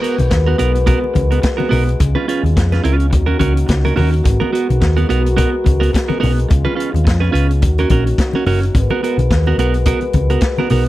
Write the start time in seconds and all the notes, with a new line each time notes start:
Already playing: G#3 F#4 A#4 B4
0.02 B3 F#4 A#4, closed hi-hat
0.18 B1, muted clean electric guitar stroke, closed hi-hat, high conga
0.30 D#2, muted clean electric guitar stroke, kick, snare, closed hi-hat
0.46 B3 F#4 A#4
0.58 B1 B3 F#4 A#4, closed hi-hat
0.74 muted clean electric guitar stroke, closed hi-hat
0.86 B3 F#4 A#4, kick, closed hi-hat, muted conga, low conga
1.01 muted clean electric guitar stroke, muted conga
1.14 C#2, muted clean electric guitar stroke, kick, closed hi-hat, high conga
1.31 B3 F#4 A#4, closed hi-hat
1.42 muted clean electric guitar stroke, kick, snare, closed hi-hat, muted conga
1.57 B3 F#4 A#4, muted conga, high conga
1.69 B1 B3 F#4 A#4, open hi-hat, low conga
1.86 muted clean electric guitar stroke, closed hi-hat
2.00 C#2 C#3 B3 F4, muted clean electric guitar stroke, kick, closed hi-hat, low conga
2.15 C#4 F4 B4, muted conga, high conga
2.28 C#4 F4 B4, closed hi-hat
2.43 D#2, closed hi-hat, high conga
2.56 F2, muted clean electric guitar stroke, kick, snare, closed hi-hat
2.72 C#4 F4 B4, snare, closed hi-hat, muted conga
2.84 C#2 C#4 F4 B4, closed hi-hat
2.98 muted clean electric guitar stroke, closed hi-hat
3.10 D#2 D#3 C#4 F#4, muted clean electric guitar stroke, kick, closed hi-hat, muted conga, low conga
3.14 A#3
3.26 C#4 F#4 A#4, muted conga
3.39 C#2 C#4 F#4 A#4, kick, closed hi-hat, high conga
3.56 muted clean electric guitar stroke, closed hi-hat
3.66 C#2, muted clean electric guitar stroke, kick, snare, closed hi-hat, muted conga
3.85 C#4 F#4 A#4, closed hi-hat, muted conga, high conga
3.96 D#2 C#4 F#4 A#4, open hi-hat, low conga
4.12 muted clean electric guitar stroke, closed hi-hat
4.24 G#1 G#3 A#4 B4, muted clean electric guitar stroke, kick, closed hi-hat, muted conga, low conga
4.40 B3 F#4 A#4, muted conga, high conga
4.52 B3 F#4 A#4, closed hi-hat
4.69 B1, muted clean electric guitar stroke, closed hi-hat, high conga
4.81 D#2, muted clean electric guitar stroke, kick, snare, closed hi-hat, muted conga
4.97 B3 F#4 A#4, closed hi-hat, muted conga
5.09 B1 B3 F#4 A#4, closed hi-hat
5.25 muted clean electric guitar stroke, closed hi-hat
5.37 B3 F#4 A#4, kick, closed hi-hat, low conga
5.53 muted clean electric guitar stroke
5.64 C#2, muted clean electric guitar stroke, kick, closed hi-hat, high conga
5.80 B3 F#4 A#4, closed hi-hat
5.93 muted clean electric guitar stroke, kick, snare, closed hi-hat, muted conga
6.08 B3 F#4 A#4, high conga
6.20 B1 B3 F#4 A#4, open hi-hat, low conga
6.34 muted clean electric guitar stroke
6.39 closed hi-hat
6.49 C#2 C#3 B3 F4, muted clean electric guitar stroke, kick, closed hi-hat, low conga
6.65 C#4 F4 B4, high conga
6.75 C#4 F4 B4
6.80 closed hi-hat
6.92 D#2, muted clean electric guitar stroke, closed hi-hat, high conga
7.04 F2, muted clean electric guitar stroke, kick, snare, closed hi-hat
7.20 C#4 F4 B4
7.32 C#2 C#4 F4 B4, closed hi-hat
7.49 muted clean electric guitar stroke, closed hi-hat
7.62 D#2 D#3 A#3 C#4 F#4, muted clean electric guitar stroke, kick, closed hi-hat, low conga
7.78 C#4 F#4 A#4, closed hi-hat, muted conga
7.89 A#1 C#4 F#4 A#4, kick, closed hi-hat, high conga
8.06 muted clean electric guitar stroke, closed hi-hat
8.18 muted clean electric guitar stroke, kick, snare, closed hi-hat, muted conga
8.33 C#4 F#4 A#4, muted conga, high conga
8.46 F#1 C#4 F#4 A#4, open hi-hat, low conga
8.62 muted clean electric guitar stroke, closed hi-hat
8.75 G#1 G#3 F#4 A#4 B4, muted clean electric guitar stroke, kick, closed hi-hat, low conga
8.90 B3 F#4 A#4, muted conga, high conga
9.03 B3 F#4 A#4, closed hi-hat
9.18 B1, closed hi-hat, high conga
9.31 D#2, muted clean electric guitar stroke, kick, snare, closed hi-hat, muted conga
9.46 B3 F#4 A#4, muted conga
9.58 B1 B3 F#4 A#4, closed hi-hat
9.74 muted clean electric guitar stroke, closed hi-hat
9.85 B3 F#4 A#4, kick, closed hi-hat, muted conga, low conga
10.01 muted clean electric guitar stroke, closed hi-hat, muted conga
10.13 C#2, muted clean electric guitar stroke, kick, closed hi-hat, high conga
10.30 B3 F#4 A#4, closed hi-hat
10.41 muted clean electric guitar stroke, kick, snare, closed hi-hat
10.58 B3 F#4 A#4, muted conga, high conga
10.70 B1 B3 F#4 A#4, open hi-hat, low conga